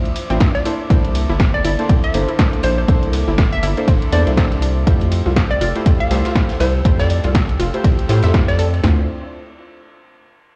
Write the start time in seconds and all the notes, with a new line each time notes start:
Already playing: A3 D4 E4 F4 C5 E5 D6
0.05 closed hi-hat
0.16 open hi-hat, ride
0.30 A1 A3 C4 D4 E4 F4 C5, snare, closed hi-hat
0.40 G2, kick, snare, closed hi-hat, ride
0.55 D5, snare, closed hi-hat
0.65 A#3 D4 E4 A4 C5 A5, open hi-hat, ride
0.89 C2 A#3 C4 D4 E4 A4 C5, kick, closed hi-hat, ride
1.04 closed hi-hat, ride
1.15 open hi-hat, ride
1.29 G1 E4, snare
1.40 kick, snare, closed hi-hat, ride
1.54 D5
1.65 G1 E4 D5, open hi-hat, ride
1.78 A#3 D4 E4 A4 C5, snare, closed hi-hat
1.89 C2 C4, kick, closed hi-hat, ride
2.04 E5, closed hi-hat
2.14 G1 A#3 D4 E4 A4 C5, open hi-hat, ride
2.28 E4, closed hi-hat
2.38 A#3 D4 E4 A4 C5, kick, snare, closed hi-hat, ride
2.53 closed hi-hat
2.63 A#1 D4 C5, open hi-hat, ride
2.78 C5
2.88 C2 A#3 C4 D4 E4 A4 C5, kick, closed hi-hat, ride
3.03 closed hi-hat
3.13 snare, open hi-hat, ride
3.27 G1 E4, snare
3.38 kick, snare, closed hi-hat, ride
3.52 E5
3.63 G1 E4, open hi-hat, ride
3.77 A#3 D4 E4 A4 C5, closed hi-hat
3.88 G1 C4, kick, closed hi-hat, ride
4.02 closed hi-hat
4.12 E2 A#3 D4 E4 A4 C5 D5, open hi-hat, ride
4.27 C2 E4, snare, closed hi-hat
4.37 A#3 D4 E4 A4 C5, kick, snare, closed hi-hat, ride
4.51 snare, closed hi-hat
4.62 D4, open hi-hat, ride
4.86 F2 A3 C4 E4 F4 G4 A4 C5 G5 E6, kick, closed hi-hat, ride
5.01 closed hi-hat, ride
5.11 open hi-hat, ride
5.25 C2 F4, snare
5.36 kick, snare, closed hi-hat, ride
5.51 D5
5.61 F1 F4 D5, open hi-hat, ride
5.75 A3 E4 F4 G4 C5, snare, closed hi-hat
5.86 F2 C4, kick, closed hi-hat, ride
6.00 F5, closed hi-hat
6.10 C2 A3 E4 F4 G4 C5, snare, open hi-hat, ride
6.25 F4, snare, closed hi-hat, ride
6.35 A3 E4 F4 G4 C5, kick, snare, closed hi-hat, ride
6.49 snare, closed hi-hat, ride
6.60 C2 E4 C5, snare, open hi-hat, ride
6.85 F2 A3 C4 E4 F4 G4 C5, kick, closed hi-hat, ride
6.99 D5, snare, closed hi-hat, ride
7.10 open hi-hat
7.24 C2 F4, closed hi-hat, ride
7.35 kick, snare, closed hi-hat, ride
7.49 closed hi-hat
7.59 F1 F4, open hi-hat, ride
7.74 A3 E4 F4 G4 C5, closed hi-hat
7.84 C2 C4, kick, closed hi-hat, ride
7.99 closed hi-hat
8.09 A2 A3 E4 F4 G4 C5, snare, open hi-hat, ride
8.22 F2 E5, snare, closed hi-hat, ride
8.33 A3 E4 F4 G4, kick, snare, closed hi-hat, ride
8.48 D5, snare, closed hi-hat, ride
8.59 A4, open hi-hat
8.74 ride
8.82 D2 A3 C4 D4 E4 F4 C5, snare, floor tom